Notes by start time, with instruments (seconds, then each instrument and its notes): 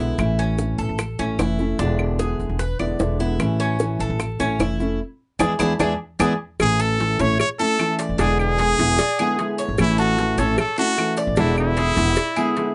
0.00 upright bass B1, nylon-string guitar D3 G#3 B3 E4, cuban tres E4
0.18 upright bass A1, nylon-string guitar E3 A3 C#4 E4, high bongo, claves, maracas
0.39 cuban tres C#4, high bongo
0.58 nylon-string guitar E3 A3 C#4 E4, high bongo, maracas
0.78 upright bass A1, cuban tres A4, maracas
0.89 upright bass A1
0.99 muted nylon-string guitar stroke, high bongo, claves, maracas
1.19 upright bass A1, nylon-string guitar A3 C#4 E4, cuban tres C#4, high bongo
1.39 upright bass F1, nylon-string guitar E3 A3 C#4 E4, cuban tres E4, high bongo, low bongo, claves, maracas
1.59 nylon-string guitar A3 C#4 E4, high bongo, maracas
1.79 upright bass E1, nylon-string guitar B2 D3 G#3 B3 E4, cuban tres D4, high bongo, maracas
1.99 high bongo, claves
2.19 nylon-string guitar D3 G#3 B3 E4, cuban tres G#4, high bongo, maracas
2.40 upright bass E1, maracas
2.49 upright bass E1
2.59 cuban tres B4, muted nylon-string guitar stroke, high bongo, maracas
2.79 upright bass E1, nylon-string guitar D3 G#3 B3 E4, cuban tres D5, high bongo, claves
2.99 upright bass E1, nylon-string guitar D3 G#3 B3 E4, high bongo, low bongo, maracas
3.20 nylon-string guitar D3 G#3 B3 E4, cuban tres E4, high bongo, maracas
3.39 upright bass A1, nylon-string guitar E3 A3 C#4 E4, high bongo, claves, maracas
3.60 cuban tres C#4, high bongo
3.79 nylon-string guitar E3 A3 C#4 E4, high bongo, maracas
3.99 upright bass A1, cuban tres A4, maracas
4.10 upright bass A1
4.19 muted nylon-string guitar stroke, high bongo, claves, maracas
4.39 upright bass A1, nylon-string guitar A3 C#4 E4, cuban tres C#4, high bongo, maracas
4.59 upright bass F1, nylon-string guitar E3 A3 C#4 E4, cuban tres E4, high bongo, low bongo, claves, maracas
4.80 nylon-string guitar A3 C#4 E4, high bongo, maracas
5.39 upright bass E2, nylon-string guitar E3 G#3 B3, cuban tres D4 E4 G#4, low bongo, claves, maracas
5.59 upright bass E2, nylon-string guitar E3 G#3 B3, cuban tres D4 E4 G#4, low bongo, claves, maracas
5.79 upright bass E2, nylon-string guitar E3 G#3 B3, cuban tres D4 E4 G#4, low bongo, claves, maracas
6.19 upright bass E2, nylon-string guitar E3 G#3 B3, cuban tres D4 E4 G#4, low bongo, claves, maracas
6.60 upright bass A1, nylon-string guitar E3 A3 C#4 E4, trumpet G#4, cowbell, claves, maracas
6.80 cuban tres A4, trumpet A4, maracas
6.99 nylon-string guitar E3 A3 C#4 E4, cowbell, maracas
7.19 upright bass A1, nylon-string guitar A3 C#4 E4, cuban tres C#5, trumpet C#5, cowbell, maracas
7.39 trumpet C#5, muted nylon-string guitar stroke, cowbell, claves, maracas
7.59 nylon-string guitar A3 C#4 E4, cuban tres A4, trumpet A4, maracas
7.79 nylon-string guitar E3 A3 C#4 E4, cowbell, claves, maracas
7.99 cuban tres D5, cowbell, maracas
8.09 upright bass F#1
8.18 upright bass E1, nylon-string guitar B2 D3 G#3 B3 E4, cuban tres D4, trumpet G#4, cowbell, maracas
8.39 trumpet G#4, claves, maracas
8.58 nylon-string guitar D3 G#3 B3 E4, cuban tres G#4, cowbell, maracas
8.79 upright bass E1, nylon-string guitar D3 G#3 B3 E4, cowbell, maracas
8.98 cuban tres D5, muted nylon-string guitar stroke, cowbell, maracas
9.19 nylon-string guitar D3 G#3 B3 E4, cuban tres G#4, claves, maracas
9.39 nylon-string guitar D3 G#3 B3 E4, cowbell, maracas
9.58 cuban tres C#5, maracas
9.69 upright bass G#1
9.78 upright bass A1, nylon-string guitar E3 A3 C#4 E4, trumpet E4, cowbell, claves, maracas
9.98 trumpet F#4, cuban tres A4, maracas
10.18 nylon-string guitar E3 A3 C#4 E4, cowbell, maracas
10.38 upright bass A1, nylon-string guitar A3 C#4 E4, trumpet A4, cuban tres C#5, cowbell, maracas
10.58 trumpet A4, muted nylon-string guitar stroke, cowbell, claves, maracas
10.77 nylon-string guitar A3 C#4 E4, trumpet F#4, cuban tres A4, maracas
10.97 nylon-string guitar E3 A3 C#4 E4, cowbell, claves, maracas
11.17 cuban tres D5, cowbell, maracas
11.27 upright bass A1
11.36 upright bass E1, nylon-string guitar B2 D3 G#3 B3 E4, cuban tres D4, trumpet E4, cowbell, maracas
11.57 trumpet E4, claves, maracas
11.77 nylon-string guitar D3 G#3 B3 E4, cuban tres G#4, cowbell, maracas
11.97 upright bass E1, nylon-string guitar D3 G#3 B3 E4, cowbell, maracas
12.16 cuban tres D5, muted nylon-string guitar stroke, cowbell, maracas
12.36 nylon-string guitar D3 G#3 B3 E4, cuban tres G#4, claves, maracas
12.56 nylon-string guitar D3 G#3 B3 E4, cowbell, maracas